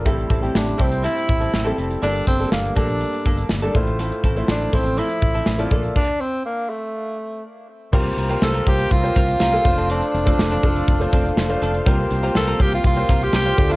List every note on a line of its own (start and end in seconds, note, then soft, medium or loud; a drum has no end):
0.05 0.24 A1 medium
0.05 0.76 A2 medium
0.05 0.36 G3 medium
0.05 0.19 G3 medium
0.05 0.36 C4 medium
0.05 0.18 C4 medium
0.05 0.36 E4 medium
0.05 0.17 E4 medium
0.05 0.36 A4 medium
0.05 0.17 A4 medium
0.05 kick loud
0.05 closed hi-hat medium
0.18 muted clean electric guitar stroke soft
0.18 closed hi-hat soft
0.30 0.48 A1 medium
0.30 0.40 G3 medium
0.30 0.41 C4 medium
0.30 0.41 E4 medium
0.30 0.41 A4 medium
0.30 kick medium
0.30 closed hi-hat medium
0.41 0.72 G3 medium
0.41 0.53 G3 soft
0.41 0.72 C4 medium
0.41 0.53 C4 medium
0.41 0.73 E4 medium
0.41 0.53 E4 medium
0.41 0.73 G4 medium
0.41 0.53 A4 medium
0.41 closed hi-hat soft
0.54 0.73 A1 medium
0.54 0.83 D4 medium
0.54 muted clean electric guitar stroke soft
0.54 snare loud
0.67 muted clean electric guitar stroke soft
0.67 closed hi-hat soft
0.78 1.06 C2 medium
0.78 0.92 G3 medium
0.78 1.49 G3 medium
0.78 0.91 C4 medium
0.78 1.50 C4 medium
0.78 1.04 C4 medium
0.78 0.90 E4 medium
0.78 1.50 E4 medium
0.78 0.90 A4 medium
0.78 1.50 C5 medium
0.78 kick medium
0.78 closed hi-hat medium
0.91 muted clean electric guitar stroke soft
0.91 closed hi-hat medium
1.03 1.17 G3 medium
1.03 1.16 C4 medium
1.03 1.15 E4 medium
1.03 1.74 E4 medium
1.03 1.15 A4 medium
1.03 closed hi-hat medium
1.16 muted clean electric guitar stroke soft
1.16 closed hi-hat soft
1.28 1.47 A1 medium
1.28 muted clean electric guitar stroke soft
1.28 kick medium
1.28 closed hi-hat medium
1.40 1.52 G3 soft
1.40 1.52 C4 soft
1.40 1.51 E4 soft
1.40 1.51 A4 soft
1.40 closed hi-hat soft
1.53 1.71 A1 medium
1.53 muted clean electric guitar stroke soft
1.53 snare loud
1.65 1.96 G3 medium
1.65 1.76 G3 medium
1.65 1.76 C4 medium
1.65 1.96 C4 medium
1.65 1.77 E4 medium
1.65 1.96 E4 medium
1.65 1.77 A4 medium
1.65 1.96 A4 medium
1.65 closed hi-hat soft
1.77 1.96 F1 medium
1.77 1.88 G3 medium
1.77 1.88 C4 medium
1.77 1.88 E4 medium
1.77 1.89 A4 medium
1.77 closed hi-hat medium
1.90 muted clean electric guitar stroke soft
1.90 closed hi-hat soft
2.02 2.20 G1 medium
2.02 2.72 G2 medium
2.02 2.16 G3 medium
2.02 2.32 G3 medium
2.02 2.33 A#3 medium
2.02 2.15 A#3 medium
2.02 2.14 D4 medium
2.02 2.33 D4 medium
2.02 2.26 D4 loud
2.02 2.14 A4 medium
2.02 2.33 A4 medium
2.02 closed hi-hat medium
2.16 closed hi-hat soft
2.27 2.45 G1 medium
2.27 2.38 G3 medium
2.27 2.38 A#3 medium
2.27 2.50 C4 medium
2.27 2.38 D4 medium
2.27 2.38 A4 medium
2.27 kick medium
2.27 closed hi-hat medium
2.39 2.69 G3 medium
2.39 2.50 G3 soft
2.39 2.70 A#3 medium
2.39 2.50 A#3 medium
2.39 2.50 D4 soft
2.39 2.70 D4 medium
2.39 2.50 A4 medium
2.39 2.70 A4 medium
2.39 closed hi-hat soft
2.51 2.69 G1 medium
2.51 2.75 A#3 medium
2.51 muted clean electric guitar stroke soft
2.51 snare loud
2.63 muted clean electric guitar stroke soft
2.63 closed hi-hat soft
2.76 3.03 A#1 medium
2.76 2.89 G3 medium
2.76 3.46 G3 medium
2.76 2.83 A3 soft
2.76 2.88 A#3 medium
2.76 3.46 D4 medium
2.76 2.88 D4 medium
2.76 3.47 D4 medium
2.76 2.87 A4 medium
2.76 3.47 A4 medium
2.76 kick medium
2.76 closed hi-hat medium
2.83 3.50 A#3 medium
2.89 muted clean electric guitar stroke soft
2.89 closed hi-hat medium
3.01 muted clean electric guitar stroke soft
3.01 closed hi-hat medium
3.13 muted clean electric guitar stroke soft
3.13 closed hi-hat soft
3.25 3.43 G1 medium
3.25 3.38 G3 medium
3.25 3.38 A#3 medium
3.25 3.37 D4 medium
3.25 3.36 A4 medium
3.25 kick medium
3.25 closed hi-hat medium
3.37 3.49 G3 soft
3.37 3.49 A#3 soft
3.37 3.48 D4 medium
3.37 3.48 A4 medium
3.37 closed hi-hat medium
3.49 3.68 G1 medium
3.49 muted clean electric guitar stroke soft
3.49 snare medium
3.62 3.75 G3 medium
3.62 3.75 A#3 medium
3.62 3.76 D4 medium
3.62 3.75 D4 medium
3.62 3.75 A4 medium
3.62 closed hi-hat medium
3.75 4.10 A1 medium
3.75 4.45 A2 medium
3.75 4.25 A3 medium
3.75 4.25 E4 medium
3.75 4.25 F4 medium
3.75 4.26 C5 medium
3.75 muted clean electric guitar stroke soft
3.75 kick loud
3.75 closed hi-hat medium
3.87 muted clean electric guitar stroke soft
3.87 closed hi-hat soft
3.99 4.13 A3 medium
3.99 4.11 C4 medium
3.99 4.11 E4 medium
3.99 4.10 A4 medium
3.99 closed hi-hat medium
4.12 muted clean electric guitar stroke soft
4.12 closed hi-hat soft
4.23 4.41 A1 medium
4.23 4.34 A3 medium
4.23 4.34 C4 medium
4.23 4.35 E4 medium
4.23 4.35 A4 medium
4.23 kick medium
4.23 closed hi-hat medium
4.36 4.66 A3 medium
4.36 4.47 A3 medium
4.36 4.47 C4 medium
4.36 4.66 E4 medium
4.36 4.47 E4 medium
4.36 4.66 F4 medium
4.36 4.47 A4 medium
4.36 4.67 C5 medium
4.36 closed hi-hat soft
4.48 4.66 A1 medium
4.48 4.76 D4 medium
4.48 muted clean electric guitar stroke soft
4.48 snare loud
4.61 muted clean electric guitar stroke soft
4.61 closed hi-hat soft
4.72 5.00 A1 medium
4.72 5.43 F3 medium
4.72 5.43 A3 medium
4.72 4.86 A3 medium
4.72 4.85 C4 medium
4.72 5.00 C4 medium
4.72 5.43 E4 medium
4.72 4.85 E4 medium
4.72 4.85 A4 medium
4.72 5.43 C5 medium
4.72 kick medium
4.72 closed hi-hat medium
4.85 muted clean electric guitar stroke soft
4.85 closed hi-hat medium
4.97 5.11 A3 medium
4.97 5.10 C4 medium
4.97 5.72 E4 medium
4.97 5.10 E4 loud
4.97 5.09 A4 medium
4.97 closed hi-hat medium
5.10 muted clean electric guitar stroke soft
5.10 closed hi-hat soft
5.22 5.40 A1 medium
5.22 muted clean electric guitar stroke soft
5.22 kick medium
5.22 closed hi-hat medium
5.34 5.46 A3 soft
5.34 5.46 C4 medium
5.34 5.45 E4 medium
5.34 5.45 A4 medium
5.34 closed hi-hat soft
5.46 5.64 A1 medium
5.46 snare medium
5.58 5.71 A3 medium
5.58 5.70 A3 medium
5.58 5.72 C4 medium
5.58 5.71 E4 medium
5.58 5.72 E4 medium
5.58 5.69 F4 medium
5.58 5.71 A4 medium
5.58 5.71 D5 medium
5.58 closed hi-hat medium
5.70 5.89 A#1 medium
5.70 5.82 A3 medium
5.70 5.91 A#3 medium
5.70 5.82 D4 medium
5.70 5.91 F4 medium
5.70 5.82 F4 medium
5.70 5.92 A4 medium
5.70 5.82 A4 medium
5.70 5.92 D5 medium
5.70 kick loud
5.70 closed hi-hat medium
5.83 muted clean electric guitar stroke soft
5.83 closed hi-hat soft
5.96 6.22 D4 loud
5.96 kick loud
5.96 crash medium
6.21 6.45 C4 medium
6.46 6.71 A#3 medium
6.70 7.44 A3 medium
7.92 8.11 C2 medium
7.92 8.63 C3 medium
7.92 8.06 G3 medium
7.92 8.22 A#3 medium
7.92 8.05 C4 medium
7.92 8.23 F4 medium
7.92 8.04 F4 medium
7.92 8.23 G4 medium
7.92 9.64 G4 medium
7.92 8.04 A#4 medium
7.92 8.23 C5 medium
7.92 9.64 C5 medium
7.92 13.76 F5 medium
7.92 9.64 A#5 medium
7.92 kick loud
7.92 crash medium
8.05 muted clean electric guitar stroke soft
8.05 closed hi-hat soft
8.17 8.35 C2 medium
8.17 muted clean electric guitar stroke soft
8.17 closed hi-hat medium
8.29 8.41 G3 soft
8.29 8.60 A#3 medium
8.29 8.40 C4 medium
8.29 8.40 F4 medium
8.29 8.60 F4 medium
8.29 8.60 G4 medium
8.29 8.40 A#4 medium
8.29 8.60 C5 medium
8.29 closed hi-hat soft
8.42 8.60 C2 medium
8.42 8.70 A4 medium
8.42 snare loud
8.54 8.66 G3 medium
8.54 8.66 C4 medium
8.54 8.66 F4 medium
8.54 8.67 A#4 medium
8.54 closed hi-hat soft
8.66 8.84 C2 medium
8.66 8.96 A#3 medium
8.66 8.97 F4 medium
8.66 8.97 G4 medium
8.66 8.94 G4 medium
8.66 8.97 C5 medium
8.66 muted clean electric guitar stroke soft
8.66 kick medium
8.66 closed hi-hat medium
8.79 muted clean electric guitar stroke soft
8.79 closed hi-hat medium
8.91 9.09 C2 loud
8.91 9.90 F4 loud
8.91 kick medium
8.91 closed hi-hat medium
9.03 9.43 A#3 medium
9.03 9.43 F4 medium
9.03 9.44 G4 medium
9.03 9.44 C5 medium
9.03 muted clean electric guitar stroke soft
9.03 closed hi-hat soft
9.16 9.34 C2 medium
9.16 9.29 G3 medium
9.16 9.28 C4 medium
9.16 9.28 F4 medium
9.16 9.27 A#4 medium
9.16 kick medium
9.16 closed hi-hat medium
9.28 muted clean electric guitar stroke medium
9.28 closed hi-hat medium
9.40 9.58 C2 medium
9.40 9.53 G3 medium
9.40 9.53 C4 medium
9.40 9.52 F4 medium
9.40 9.52 A#4 medium
9.40 snare loud
9.52 9.65 A#3 medium
9.52 9.63 F4 medium
9.52 9.65 G4 medium
9.52 9.65 A4 medium
9.52 muted clean electric guitar stroke soft
9.52 closed hi-hat medium
9.64 10.00 F1 medium
9.64 10.14 A3 medium
9.64 10.15 D4 medium
9.64 10.15 F4 medium
9.64 11.85 A4 medium
9.64 10.15 C5 medium
9.64 11.85 D5 medium
9.64 13.76 C6 medium
9.64 muted clean electric guitar stroke soft
9.64 kick loud
9.64 closed hi-hat medium
9.78 9.88 F3 medium
9.78 9.88 C4 medium
9.78 9.88 D4 medium
9.78 9.88 A4 medium
9.78 closed hi-hat soft
9.90 10.03 F3 medium
9.90 10.02 C4 medium
9.90 11.58 D4 medium
9.90 10.02 D4 medium
9.90 10.01 A4 medium
9.90 closed hi-hat medium
10.02 muted clean electric guitar stroke soft
10.02 closed hi-hat soft
10.14 10.32 F1 medium
10.14 muted clean electric guitar stroke soft
10.14 closed hi-hat medium
10.25 10.38 F3 medium
10.25 10.56 A3 medium
10.25 10.38 C4 medium
10.25 10.56 D4 medium
10.25 10.37 D4 medium
10.25 10.56 F4 medium
10.25 10.37 A4 medium
10.25 10.56 C5 medium
10.25 kick medium
10.25 closed hi-hat soft
10.38 10.56 F1 medium
10.38 muted clean electric guitar stroke soft
10.38 snare loud
10.52 10.63 F3 medium
10.52 10.64 C4 medium
10.52 10.64 D4 medium
10.52 10.64 A4 medium
10.52 closed hi-hat soft
10.63 10.81 F1 loud
10.63 10.93 A3 medium
10.63 10.93 D4 medium
10.63 10.94 F4 medium
10.63 10.94 A4 medium
10.63 muted clean electric guitar stroke soft
10.63 kick medium
10.63 closed hi-hat medium
10.76 muted clean electric guitar stroke medium
10.76 closed hi-hat medium
10.88 11.06 F1 medium
10.88 kick medium
10.88 closed hi-hat medium
11.00 11.40 A3 medium
11.00 11.40 D4 medium
11.00 11.41 F4 medium
11.00 11.41 C5 medium
11.00 muted clean electric guitar stroke soft
11.00 closed hi-hat medium
11.13 11.30 F1 medium
11.13 11.26 F3 medium
11.13 11.25 C4 medium
11.13 11.25 D4 medium
11.13 11.24 A4 medium
11.13 kick medium
11.13 closed hi-hat medium
11.25 muted clean electric guitar stroke soft
11.25 closed hi-hat medium
11.37 11.55 F1 medium
11.37 snare loud
11.49 11.79 A3 medium
11.49 11.79 D4 medium
11.49 11.80 F4 medium
11.49 11.80 C5 medium
11.49 muted clean electric guitar stroke soft
11.49 closed hi-hat medium
11.62 11.79 F1 loud
11.62 11.75 F3 medium
11.62 11.74 C4 medium
11.62 11.74 D4 medium
11.62 11.73 A4 medium
11.62 closed hi-hat medium
11.74 muted clean electric guitar stroke soft
11.74 closed hi-hat soft
11.85 12.04 C2 loud
11.85 12.56 C3 medium
11.85 11.99 G3 medium
11.85 12.16 A#3 medium
11.85 11.99 C4 medium
11.85 12.16 F4 medium
11.85 11.99 F4 medium
11.85 12.16 G4 medium
11.85 13.57 A#4 medium
11.85 11.98 A#4 medium
11.85 12.17 C5 medium
11.85 13.57 G5 medium
11.85 kick loud
11.85 closed hi-hat medium
11.99 muted clean electric guitar stroke soft
11.99 closed hi-hat soft
12.11 12.28 C2 medium
12.11 muted clean electric guitar stroke soft
12.11 closed hi-hat medium
12.22 12.34 G3 medium
12.22 12.53 A#3 medium
12.22 12.34 C4 medium
12.22 12.53 F4 medium
12.22 12.34 F4 medium
12.22 12.53 G4 medium
12.22 12.34 A#4 medium
12.22 12.53 C5 medium
12.22 closed hi-hat soft
12.35 12.53 C2 medium
12.35 12.63 A4 medium
12.35 snare loud
12.48 12.59 G3 medium
12.48 12.59 C4 medium
12.48 12.60 F4 medium
12.48 12.60 A#4 medium
12.48 closed hi-hat soft
12.59 12.77 C2 loud
12.59 12.89 A#3 medium
12.59 12.90 F4 medium
12.59 12.90 G4 medium
12.59 12.73 G4 medium
12.59 12.90 C5 medium
12.59 muted clean electric guitar stroke soft
12.59 kick medium
12.59 closed hi-hat medium
12.72 12.85 F4 medium
12.72 muted clean electric guitar stroke soft
12.72 closed hi-hat medium
12.84 13.02 C2 loud
12.84 13.25 F4 medium
12.84 kick medium
12.84 closed hi-hat medium
12.96 13.36 A#3 medium
12.96 13.37 F4 medium
12.96 13.37 G4 medium
12.96 13.37 C5 medium
12.96 muted clean electric guitar stroke medium
12.96 closed hi-hat soft
13.09 13.27 C2 medium
13.09 13.22 G3 medium
13.09 13.21 C4 medium
13.09 13.21 F4 medium
13.09 13.20 A#4 medium
13.09 kick medium
13.09 closed hi-hat medium
13.21 13.35 G4 medium
13.21 muted clean electric guitar stroke soft
13.21 closed hi-hat medium
13.33 13.51 C2 medium
13.33 13.47 G3 medium
13.33 13.45 C4 medium
13.33 13.45 F4 medium
13.33 13.74 G4 loud
13.33 13.44 A#4 medium
13.33 snare loud
13.45 13.58 A#3 medium
13.45 13.57 F4 medium
13.45 13.58 G4 medium
13.45 13.57 C5 medium
13.45 muted clean electric guitar stroke soft
13.45 closed hi-hat medium
13.57 13.76 D2 medium
13.57 13.76 D3 medium
13.57 13.76 A3 medium
13.57 13.76 D4 medium
13.57 13.76 F4 medium
13.57 13.76 A4 medium
13.57 13.76 C5 medium
13.57 13.76 D5 medium
13.57 muted clean electric guitar stroke soft
13.57 kick loud
13.57 closed hi-hat medium
13.70 13.76 F3 medium
13.70 13.76 C4 medium
13.70 13.76 D4 medium
13.70 13.76 F4 medium
13.70 13.76 A4 medium
13.70 closed hi-hat soft